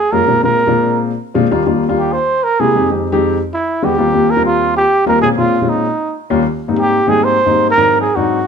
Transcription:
0.00 0.14 G#4 medium
0.13 0.23 F#2 medium
0.13 0.23 G#3 medium
0.13 0.23 A#3 medium
0.13 0.23 C#4 medium
0.13 0.23 F4 medium
0.13 0.43 A#4 medium
0.27 0.38 A#2 medium
0.27 0.38 G#3 medium
0.27 0.38 C4 medium
0.27 0.38 D4 medium
0.27 0.39 F4 medium
0.43 0.59 A#2 medium
0.43 0.59 G#3 medium
0.43 0.59 C4 medium
0.43 0.59 D4 medium
0.43 0.59 F4 medium
0.43 1.01 A#4 medium
0.67 1.10 A#2 medium
0.67 1.10 G#3 medium
0.67 1.10 C4 medium
0.67 1.10 D4 medium
0.67 1.10 F4 medium
1.34 1.46 A#2 medium
1.34 1.46 G#3 medium
1.34 1.46 C4 medium
1.34 1.46 D4 medium
1.34 1.46 F4 medium
1.51 1.62 D#2 medium
1.51 1.62 G3 medium
1.51 1.62 A#3 medium
1.51 1.62 D4 medium
1.51 1.62 F4 loud
1.66 1.82 D#2 medium
1.66 1.83 G3 medium
1.66 1.83 A#3 medium
1.66 1.83 D4 medium
1.66 1.83 F4 medium
1.88 2.12 D#2 medium
1.88 2.12 G3 medium
1.88 2.12 A#3 medium
1.88 2.12 D4 medium
1.88 2.13 F4 medium
1.99 2.14 G4 medium
2.13 2.45 C5 medium
2.44 2.62 A#4 medium
2.60 2.70 C3 medium
2.60 2.70 G#3 medium
2.60 2.70 A#3 medium
2.60 2.71 E4 medium
2.60 2.70 G4 medium
2.60 2.91 G#4 medium
2.75 2.86 F2 medium
2.75 2.86 G#3 medium
2.75 2.86 C4 medium
2.75 2.86 D#4 medium
2.75 2.86 G4 medium
2.90 3.06 F2 medium
2.90 3.07 G#3 medium
2.90 3.06 C4 medium
2.90 3.07 D#4 medium
2.90 3.06 G4 medium
3.12 3.36 F2 medium
3.12 3.36 G#3 medium
3.12 3.36 C4 medium
3.12 3.36 D#4 medium
3.12 3.36 G4 loud
3.54 3.86 E4 medium
3.83 3.94 E2 medium
3.83 3.94 G#3 medium
3.83 3.94 B3 medium
3.83 3.94 D4 medium
3.83 3.94 F#4 medium
3.83 4.32 G4 medium
3.98 4.10 D#2 medium
3.98 4.09 G3 medium
3.98 4.10 A#3 medium
3.98 4.09 C4 medium
3.98 4.09 F4 medium
4.14 4.30 D#2 medium
4.14 4.30 G3 medium
4.14 4.30 A#3 medium
4.14 4.31 C4 medium
4.14 4.30 F4 medium
4.31 4.45 A#4 medium
4.36 4.80 D#2 medium
4.36 4.80 G3 medium
4.36 4.80 A#3 medium
4.36 4.80 C4 medium
4.36 4.80 F4 medium
4.45 4.74 F4 medium
4.77 5.05 G4 medium
5.06 5.18 D#2 medium
5.06 5.18 G3 medium
5.06 5.18 A#3 medium
5.06 5.18 C4 medium
5.06 5.18 F4 medium
5.06 5.21 A#4 medium
5.22 5.33 A#2 medium
5.22 5.33 G#3 medium
5.22 5.33 C4 medium
5.22 5.33 C#4 medium
5.22 5.34 F4 medium
5.22 5.29 G#4 medium
5.38 5.54 A#2 medium
5.38 5.54 G#3 medium
5.38 5.55 C4 medium
5.38 5.54 C#4 medium
5.38 5.71 F4 medium
5.38 5.55 F4 medium
5.61 5.84 A#2 medium
5.61 5.84 G#3 medium
5.61 5.85 C4 medium
5.61 5.84 C#4 medium
5.61 5.85 F4 medium
5.69 6.16 D#4 medium
6.30 6.41 D#2 loud
6.30 6.41 G3 medium
6.30 6.41 A#3 medium
6.30 6.41 C#4 medium
6.30 6.42 F4 medium
6.68 6.96 G#2 medium
6.68 6.96 G3 medium
6.68 6.96 A#3 medium
6.68 6.96 C4 medium
6.68 6.96 D#4 medium
6.79 7.11 G4 medium
7.07 7.35 G#2 medium
7.07 7.35 G3 medium
7.07 7.34 A#3 medium
7.07 7.35 C4 medium
7.07 7.35 D#4 medium
7.07 7.26 G#4 medium
7.24 7.70 C5 medium
7.46 7.68 G#2 medium
7.46 7.68 G3 medium
7.46 7.68 A#3 medium
7.46 7.68 C4 medium
7.46 7.68 D#4 medium
7.70 7.99 A#4 loud
7.77 8.04 G#2 medium
7.77 8.04 F#3 medium
7.77 8.04 C4 medium
7.77 8.05 D4 medium
7.77 8.05 D#4 medium
8.01 8.17 G#4 medium
8.16 8.38 G#2 medium
8.16 8.38 F#3 medium
8.16 8.38 C4 medium
8.16 8.38 D4 medium
8.16 8.38 D#4 medium
8.16 8.47 F#4 medium

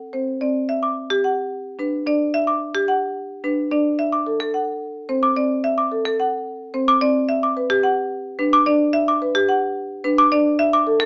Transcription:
0.13 0.32 C4 soft
0.13 0.31 C5 soft
0.41 0.59 C4 soft
0.41 0.59 D5 soft
0.69 0.87 E5 soft
0.83 1.00 D6 soft
1.10 1.28 G4 medium
1.24 1.42 F#5 soft
1.79 1.97 D4 soft
1.79 1.97 B4 soft
2.06 2.24 D4 soft
2.06 2.24 D5 soft
2.34 2.52 E5 medium
2.47 2.65 D6 soft
2.75 2.93 G4 medium
2.88 3.06 F#5 soft
3.44 3.62 D4 soft
3.44 3.62 B4 soft
3.71 3.89 D4 soft
3.71 3.89 D5 soft
3.99 4.17 E5 soft
4.12 4.30 D6 soft
4.27 4.44 A4 soft
4.40 4.58 A4 medium
4.54 4.72 F#5 soft
5.09 5.27 C4 soft
5.09 5.27 C5 soft
5.23 5.41 D6 medium
5.36 5.54 C4 soft
5.36 5.54 D5 soft
5.64 5.82 E5 medium
5.78 5.96 D6 soft
5.92 6.09 A4 soft
6.05 6.23 A4 medium
6.20 6.37 F#5 soft
6.74 6.92 C4 soft
6.74 6.92 C5 soft
6.88 7.06 D6 medium
7.01 7.20 C4 soft
7.01 7.19 D5 medium
7.29 7.47 E5 soft
7.43 7.61 D6 soft
7.57 7.75 B4 soft
7.70 7.88 G4 medium
7.83 8.02 F#5 soft
8.39 8.57 D4 soft
8.39 8.57 B4 soft
8.53 8.71 D6 medium
8.66 8.85 D4 medium
8.66 8.84 D5 medium
8.93 9.12 E5 medium
9.08 9.26 D6 soft
9.22 9.40 B4 soft
9.35 9.53 G4 medium
9.49 9.67 F#5 soft
10.04 10.22 D4 soft
10.04 10.22 B4 soft
10.18 10.36 D6 medium
10.32 10.50 D4 medium
10.32 10.50 D5 medium
10.59 10.77 E5 medium
10.73 10.91 D6 medium
10.87 11.05 A4 medium
11.00 11.05 A4 medium

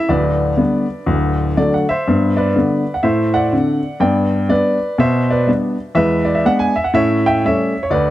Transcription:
0.09 0.51 D1 medium
0.09 0.51 D2 medium
0.09 1.53 D4 medium
0.09 1.53 B4 medium
0.09 1.56 D5 medium
0.57 0.84 D3 soft
0.57 0.85 G3 soft
0.57 0.85 B3 soft
1.06 1.49 D1 medium
1.06 1.49 D2 medium
1.57 1.84 D3 soft
1.57 1.84 F#3 soft
1.57 1.85 A3 soft
1.57 1.72 D5 medium
1.74 1.88 F#5 medium
1.89 2.34 C5 medium
1.89 2.37 E5 medium
2.08 2.48 G2 medium
2.08 2.35 B3 soft
2.37 2.91 B4 medium
2.37 2.95 D5 medium
2.55 2.82 D3 soft
2.55 2.82 G3 soft
2.55 2.83 B3 soft
2.94 3.04 F#5 medium
3.03 3.45 A2 medium
3.03 3.32 C5 medium
3.03 3.34 E5 medium
3.34 3.98 D5 medium
3.34 4.01 F#5 medium
3.53 3.79 D3 soft
3.53 3.79 C4 soft
3.53 3.80 D4 soft
4.00 4.42 G2 medium
4.00 4.28 B3 soft
4.00 4.47 D5 medium
4.00 4.50 G5 medium
4.49 4.76 G3 soft
4.49 4.77 B3 soft
4.49 4.77 D4 soft
4.49 4.96 B4 medium
4.49 4.99 D5 medium
4.98 5.40 B2 medium
4.98 5.28 C5 medium
4.98 5.30 E5 medium
5.30 5.48 B4 medium
5.30 5.48 D5 medium
5.47 5.74 G3 soft
5.47 5.75 B3 soft
5.47 5.75 D4 soft
5.95 6.37 E2 medium
5.95 6.24 G#3 soft
5.95 6.25 B4 medium
5.95 6.26 E5 medium
6.25 6.35 D5 medium
6.35 6.45 E5 medium
6.45 6.72 G#3 medium
6.45 6.72 B3 soft
6.45 6.73 D4 medium
6.45 6.61 F#5 medium
6.59 6.75 G#5 medium
6.76 6.85 E5 medium
6.84 6.94 F#5 medium
6.94 7.35 A2 medium
6.94 7.23 C#4 medium
6.94 7.23 C#5 medium
6.94 7.25 E5 medium
7.26 7.43 E5 medium
7.26 7.44 G5 medium
7.45 7.71 G3 soft
7.45 7.72 A3 soft
7.45 7.72 C#4 soft
7.45 7.81 C#5 medium
7.45 7.84 E5 medium
7.83 7.92 C#5 medium
7.90 8.10 D2 medium
7.90 8.10 B4 medium
7.90 8.10 D5 medium

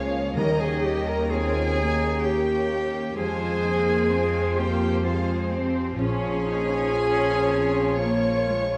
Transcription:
0.00 0.34 C#2 medium
0.00 0.42 C#3 medium
0.00 0.33 F3 medium
0.00 0.38 G#3 medium
0.00 0.42 G#3 medium
0.00 2.25 A#3 medium
0.00 0.11 C#4 medium
0.00 0.20 C#4 medium
0.00 0.41 F4 medium
0.00 0.36 G#4 medium
0.00 0.41 G#4 medium
0.00 0.38 C#5 loud
0.00 1.61 C#5 medium
0.00 2.89 C#5 medium
0.00 0.37 F5 medium
0.00 0.41 F5 medium
0.07 0.67 C#4 medium
0.37 3.18 D#2 medium
0.37 1.74 D#3 loud
0.37 2.88 D#3 medium
0.37 3.21 D#3 medium
0.37 1.30 G3 medium
0.37 1.31 G4 medium
0.37 0.60 A#4 loud
0.37 0.62 A#4 medium
0.37 1.29 D#5 medium
0.37 0.60 A#5 medium
0.60 0.86 G#4 medium
0.60 0.83 G#4 loud
0.60 0.84 G#5 medium
0.68 1.29 C#4 medium
0.83 1.06 G4 loud
0.83 1.09 G4 medium
0.83 1.07 G5 medium
0.99 2.54 A#4 medium
1.07 1.32 A#4 medium
1.07 1.31 A#4 loud
1.07 1.31 A#5 medium
1.30 1.79 C4 medium
1.30 2.85 C#4 medium
1.30 1.78 F4 medium
1.30 2.26 G#4 loud
1.30 2.25 G#4 loud
1.30 3.14 C#5 medium
1.30 2.26 G#5 loud
1.62 2.24 C#5 medium
1.79 3.18 A#3 medium
1.79 2.26 D#4 medium
1.94 3.21 A#5 medium
2.25 3.16 A#3 medium
2.25 3.16 G4 medium
2.25 3.18 G4 loud
2.25 3.18 G4 medium
2.25 3.21 C#5 medium
2.25 3.18 G5 medium
2.56 3.21 A#4 medium
2.86 3.21 C#4 medium
3.16 5.95 F2 medium
3.16 7.07 F3 medium
3.16 8.78 F3 medium
3.16 3.63 G#3 medium
3.16 4.09 G#3 medium
3.16 3.63 F4 medium
3.16 4.58 G#4 medium
3.16 4.54 G#4 loud
3.16 4.08 C5 medium
3.16 5.95 C5 medium
3.16 4.55 G#5 loud
3.48 5.66 C4 medium
3.64 4.10 A#3 medium
3.64 4.10 D#4 medium
3.79 6.94 F4 medium
4.10 4.56 G#3 medium
4.10 4.57 C4 medium
4.10 5.04 F4 medium
4.10 5.34 G#4 medium
4.10 5.94 C5 medium
4.41 5.03 C5 medium
4.56 5.04 A#3 medium
4.56 5.05 A#3 medium
4.56 5.04 G4 loud
4.56 5.05 G4 medium
4.56 5.04 G5 medium
4.73 8.63 F5 medium
5.03 5.50 G#3 medium
5.03 5.99 C4 medium
5.03 5.51 F4 medium
5.03 5.52 F4 medium
5.03 5.51 G#4 medium
5.03 6.02 C5 medium
5.03 5.51 F5 medium
5.35 8.78 G#4 medium
5.51 5.99 C4 medium
5.51 5.98 G4 medium
5.67 6.02 C4 medium
5.98 8.78 A#1 medium
5.98 8.78 A#2 medium
5.98 6.45 C#4 medium
5.98 8.00 C#4 medium
5.98 8.78 F4 medium
5.98 8.01 G#4 loud
5.98 7.96 G#4 loud
5.98 8.78 C#5 medium
5.98 7.96 G#5 loud
6.31 8.65 A#3 medium
6.47 6.96 D#4 medium
6.63 8.78 C#4 medium
6.95 7.46 C#4 medium
6.95 8.32 F4 medium
7.29 7.99 A#4 medium
7.49 8.01 C4 medium
7.65 8.78 C#5 medium
7.99 8.49 A#3 medium
7.99 8.51 A#3 medium
7.99 8.78 A#4 medium
7.99 8.78 C#5 medium
7.99 8.78 C#5 loud
7.99 8.78 C#6 medium
8.33 8.78 F4 medium
8.50 8.78 G#3 medium
8.67 8.78 A#3 soft

